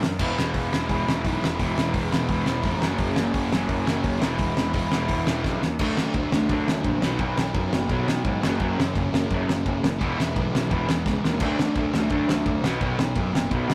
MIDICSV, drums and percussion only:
0, 0, Header, 1, 2, 480
1, 0, Start_track
1, 0, Tempo, 350672
1, 266, Time_signature, 4, 2, 24, 8
1, 18809, End_track
2, 0, Start_track
2, 0, Title_t, "Drums"
2, 39, Note_on_c, 9, 38, 113
2, 176, Note_off_c, 9, 38, 0
2, 263, Note_on_c, 9, 49, 101
2, 266, Note_on_c, 9, 36, 112
2, 400, Note_off_c, 9, 49, 0
2, 403, Note_off_c, 9, 36, 0
2, 528, Note_on_c, 9, 38, 113
2, 664, Note_off_c, 9, 38, 0
2, 740, Note_on_c, 9, 46, 61
2, 744, Note_on_c, 9, 36, 110
2, 876, Note_off_c, 9, 46, 0
2, 881, Note_off_c, 9, 36, 0
2, 998, Note_on_c, 9, 38, 115
2, 1135, Note_off_c, 9, 38, 0
2, 1223, Note_on_c, 9, 46, 57
2, 1224, Note_on_c, 9, 36, 107
2, 1360, Note_off_c, 9, 46, 0
2, 1361, Note_off_c, 9, 36, 0
2, 1486, Note_on_c, 9, 38, 113
2, 1622, Note_off_c, 9, 38, 0
2, 1705, Note_on_c, 9, 36, 110
2, 1709, Note_on_c, 9, 46, 63
2, 1842, Note_off_c, 9, 36, 0
2, 1846, Note_off_c, 9, 46, 0
2, 1970, Note_on_c, 9, 38, 123
2, 2107, Note_off_c, 9, 38, 0
2, 2183, Note_on_c, 9, 36, 114
2, 2184, Note_on_c, 9, 46, 64
2, 2320, Note_off_c, 9, 36, 0
2, 2321, Note_off_c, 9, 46, 0
2, 2434, Note_on_c, 9, 38, 116
2, 2570, Note_off_c, 9, 38, 0
2, 2655, Note_on_c, 9, 46, 66
2, 2657, Note_on_c, 9, 36, 119
2, 2792, Note_off_c, 9, 46, 0
2, 2793, Note_off_c, 9, 36, 0
2, 2909, Note_on_c, 9, 38, 118
2, 3046, Note_off_c, 9, 38, 0
2, 3131, Note_on_c, 9, 36, 106
2, 3131, Note_on_c, 9, 46, 61
2, 3268, Note_off_c, 9, 36, 0
2, 3268, Note_off_c, 9, 46, 0
2, 3370, Note_on_c, 9, 38, 108
2, 3507, Note_off_c, 9, 38, 0
2, 3600, Note_on_c, 9, 46, 62
2, 3609, Note_on_c, 9, 36, 117
2, 3737, Note_off_c, 9, 46, 0
2, 3745, Note_off_c, 9, 36, 0
2, 3858, Note_on_c, 9, 38, 111
2, 3995, Note_off_c, 9, 38, 0
2, 4081, Note_on_c, 9, 46, 57
2, 4089, Note_on_c, 9, 36, 123
2, 4218, Note_off_c, 9, 46, 0
2, 4226, Note_off_c, 9, 36, 0
2, 4329, Note_on_c, 9, 38, 116
2, 4465, Note_off_c, 9, 38, 0
2, 4573, Note_on_c, 9, 36, 112
2, 4573, Note_on_c, 9, 46, 63
2, 4709, Note_off_c, 9, 36, 0
2, 4710, Note_off_c, 9, 46, 0
2, 4825, Note_on_c, 9, 38, 116
2, 4962, Note_off_c, 9, 38, 0
2, 5049, Note_on_c, 9, 46, 58
2, 5052, Note_on_c, 9, 36, 114
2, 5186, Note_off_c, 9, 46, 0
2, 5188, Note_off_c, 9, 36, 0
2, 5302, Note_on_c, 9, 38, 108
2, 5439, Note_off_c, 9, 38, 0
2, 5525, Note_on_c, 9, 46, 58
2, 5533, Note_on_c, 9, 36, 111
2, 5662, Note_off_c, 9, 46, 0
2, 5669, Note_off_c, 9, 36, 0
2, 5773, Note_on_c, 9, 38, 123
2, 5910, Note_off_c, 9, 38, 0
2, 6000, Note_on_c, 9, 46, 63
2, 6012, Note_on_c, 9, 36, 115
2, 6137, Note_off_c, 9, 46, 0
2, 6149, Note_off_c, 9, 36, 0
2, 6255, Note_on_c, 9, 38, 112
2, 6392, Note_off_c, 9, 38, 0
2, 6481, Note_on_c, 9, 46, 71
2, 6489, Note_on_c, 9, 36, 117
2, 6618, Note_off_c, 9, 46, 0
2, 6626, Note_off_c, 9, 36, 0
2, 6730, Note_on_c, 9, 38, 113
2, 6867, Note_off_c, 9, 38, 0
2, 6959, Note_on_c, 9, 46, 63
2, 6971, Note_on_c, 9, 36, 109
2, 7096, Note_off_c, 9, 46, 0
2, 7108, Note_off_c, 9, 36, 0
2, 7213, Note_on_c, 9, 38, 118
2, 7350, Note_off_c, 9, 38, 0
2, 7452, Note_on_c, 9, 36, 109
2, 7459, Note_on_c, 9, 38, 68
2, 7588, Note_off_c, 9, 36, 0
2, 7596, Note_off_c, 9, 38, 0
2, 7693, Note_on_c, 9, 38, 93
2, 7830, Note_off_c, 9, 38, 0
2, 7926, Note_on_c, 9, 57, 123
2, 7933, Note_on_c, 9, 36, 119
2, 8063, Note_off_c, 9, 57, 0
2, 8069, Note_off_c, 9, 36, 0
2, 8176, Note_on_c, 9, 38, 112
2, 8313, Note_off_c, 9, 38, 0
2, 8402, Note_on_c, 9, 51, 74
2, 8409, Note_on_c, 9, 36, 115
2, 8539, Note_off_c, 9, 51, 0
2, 8546, Note_off_c, 9, 36, 0
2, 8656, Note_on_c, 9, 38, 113
2, 8793, Note_off_c, 9, 38, 0
2, 8886, Note_on_c, 9, 51, 77
2, 8890, Note_on_c, 9, 36, 115
2, 9022, Note_off_c, 9, 51, 0
2, 9027, Note_off_c, 9, 36, 0
2, 9146, Note_on_c, 9, 38, 110
2, 9283, Note_off_c, 9, 38, 0
2, 9365, Note_on_c, 9, 51, 79
2, 9370, Note_on_c, 9, 36, 114
2, 9502, Note_off_c, 9, 51, 0
2, 9506, Note_off_c, 9, 36, 0
2, 9613, Note_on_c, 9, 38, 119
2, 9750, Note_off_c, 9, 38, 0
2, 9837, Note_on_c, 9, 51, 78
2, 9844, Note_on_c, 9, 36, 116
2, 9974, Note_off_c, 9, 51, 0
2, 9981, Note_off_c, 9, 36, 0
2, 10096, Note_on_c, 9, 38, 118
2, 10233, Note_off_c, 9, 38, 0
2, 10325, Note_on_c, 9, 51, 80
2, 10328, Note_on_c, 9, 36, 123
2, 10462, Note_off_c, 9, 51, 0
2, 10465, Note_off_c, 9, 36, 0
2, 10578, Note_on_c, 9, 38, 119
2, 10715, Note_off_c, 9, 38, 0
2, 10806, Note_on_c, 9, 36, 109
2, 10806, Note_on_c, 9, 51, 78
2, 10942, Note_off_c, 9, 36, 0
2, 10943, Note_off_c, 9, 51, 0
2, 11063, Note_on_c, 9, 38, 109
2, 11200, Note_off_c, 9, 38, 0
2, 11287, Note_on_c, 9, 51, 72
2, 11289, Note_on_c, 9, 36, 117
2, 11424, Note_off_c, 9, 51, 0
2, 11426, Note_off_c, 9, 36, 0
2, 11545, Note_on_c, 9, 38, 123
2, 11682, Note_off_c, 9, 38, 0
2, 11767, Note_on_c, 9, 51, 76
2, 11773, Note_on_c, 9, 36, 117
2, 11904, Note_off_c, 9, 51, 0
2, 11910, Note_off_c, 9, 36, 0
2, 12042, Note_on_c, 9, 38, 109
2, 12179, Note_off_c, 9, 38, 0
2, 12258, Note_on_c, 9, 36, 116
2, 12267, Note_on_c, 9, 51, 76
2, 12394, Note_off_c, 9, 36, 0
2, 12404, Note_off_c, 9, 51, 0
2, 12510, Note_on_c, 9, 38, 114
2, 12647, Note_off_c, 9, 38, 0
2, 12738, Note_on_c, 9, 51, 72
2, 12739, Note_on_c, 9, 36, 108
2, 12875, Note_off_c, 9, 51, 0
2, 12876, Note_off_c, 9, 36, 0
2, 12994, Note_on_c, 9, 38, 109
2, 13131, Note_off_c, 9, 38, 0
2, 13221, Note_on_c, 9, 36, 113
2, 13225, Note_on_c, 9, 51, 72
2, 13358, Note_off_c, 9, 36, 0
2, 13362, Note_off_c, 9, 51, 0
2, 13472, Note_on_c, 9, 38, 117
2, 13608, Note_off_c, 9, 38, 0
2, 13702, Note_on_c, 9, 36, 120
2, 13707, Note_on_c, 9, 51, 77
2, 13839, Note_off_c, 9, 36, 0
2, 13844, Note_off_c, 9, 51, 0
2, 13963, Note_on_c, 9, 38, 115
2, 14100, Note_off_c, 9, 38, 0
2, 14184, Note_on_c, 9, 36, 122
2, 14185, Note_on_c, 9, 51, 84
2, 14321, Note_off_c, 9, 36, 0
2, 14322, Note_off_c, 9, 51, 0
2, 14440, Note_on_c, 9, 38, 112
2, 14577, Note_off_c, 9, 38, 0
2, 14660, Note_on_c, 9, 36, 107
2, 14661, Note_on_c, 9, 51, 77
2, 14797, Note_off_c, 9, 36, 0
2, 14798, Note_off_c, 9, 51, 0
2, 14903, Note_on_c, 9, 38, 110
2, 15040, Note_off_c, 9, 38, 0
2, 15138, Note_on_c, 9, 36, 114
2, 15144, Note_on_c, 9, 38, 66
2, 15275, Note_off_c, 9, 36, 0
2, 15281, Note_off_c, 9, 38, 0
2, 15392, Note_on_c, 9, 38, 95
2, 15529, Note_off_c, 9, 38, 0
2, 15604, Note_on_c, 9, 51, 74
2, 15604, Note_on_c, 9, 57, 102
2, 15616, Note_on_c, 9, 36, 111
2, 15741, Note_off_c, 9, 51, 0
2, 15741, Note_off_c, 9, 57, 0
2, 15753, Note_off_c, 9, 36, 0
2, 15868, Note_on_c, 9, 38, 112
2, 16004, Note_off_c, 9, 38, 0
2, 16088, Note_on_c, 9, 51, 76
2, 16094, Note_on_c, 9, 36, 123
2, 16225, Note_off_c, 9, 51, 0
2, 16231, Note_off_c, 9, 36, 0
2, 16339, Note_on_c, 9, 38, 109
2, 16476, Note_off_c, 9, 38, 0
2, 16557, Note_on_c, 9, 51, 70
2, 16571, Note_on_c, 9, 36, 112
2, 16694, Note_off_c, 9, 51, 0
2, 16708, Note_off_c, 9, 36, 0
2, 16825, Note_on_c, 9, 38, 118
2, 16962, Note_off_c, 9, 38, 0
2, 17054, Note_on_c, 9, 36, 114
2, 17055, Note_on_c, 9, 51, 72
2, 17191, Note_off_c, 9, 36, 0
2, 17192, Note_off_c, 9, 51, 0
2, 17302, Note_on_c, 9, 38, 119
2, 17439, Note_off_c, 9, 38, 0
2, 17531, Note_on_c, 9, 51, 75
2, 17535, Note_on_c, 9, 36, 117
2, 17668, Note_off_c, 9, 51, 0
2, 17672, Note_off_c, 9, 36, 0
2, 17779, Note_on_c, 9, 38, 119
2, 17916, Note_off_c, 9, 38, 0
2, 18005, Note_on_c, 9, 51, 78
2, 18014, Note_on_c, 9, 36, 120
2, 18141, Note_off_c, 9, 51, 0
2, 18151, Note_off_c, 9, 36, 0
2, 18277, Note_on_c, 9, 38, 116
2, 18414, Note_off_c, 9, 38, 0
2, 18496, Note_on_c, 9, 36, 108
2, 18496, Note_on_c, 9, 51, 74
2, 18633, Note_off_c, 9, 36, 0
2, 18633, Note_off_c, 9, 51, 0
2, 18749, Note_on_c, 9, 38, 114
2, 18809, Note_off_c, 9, 38, 0
2, 18809, End_track
0, 0, End_of_file